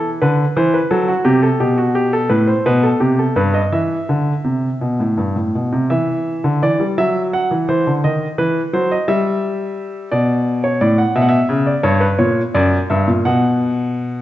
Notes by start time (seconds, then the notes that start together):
Already playing: E3
0.22 D3 B4
0.57 E3 C5
0.74 B4
0.91 F#3 A4
1.08 F#4
1.25 C3 G4
1.43 A4
1.60 B2 G4
1.78 F#4
1.95 G4
2.13 A4
2.30 A2 B4
2.47 C5
2.66 B2 B4
2.83 A4
3.00 C3 G4
3.19 A4
3.36 G2 B4
3.54 D#5
3.72 E3 E5
4.09 D3
4.44 C3
4.81 B2
5.00 A2
5.17 G2
5.36 A2
5.55 B2
5.73 C3
5.90 E3 E5
6.44 D3
6.62 E3 D5
6.80 G3
6.98 F#3 E5
7.33 F#5
7.51 E3
7.69 E3 C5
7.87 D3
8.04 D#3 D#5
8.38 E3 B4
8.73 F#3 C5
8.91 D#5
9.08 G3 E5
10.12 B2 D5
10.64 C#5
10.81 A2 D5
10.98 F#5
11.15 B2 E5
11.22 F#5
11.29 E5
11.49 C#3
11.67 D5
11.83 G2 C#5
12.00 B4
12.19 A#2 C#5
12.54 F#2 D5
12.90 G2 E5
13.08 A#2
13.25 B2 F#5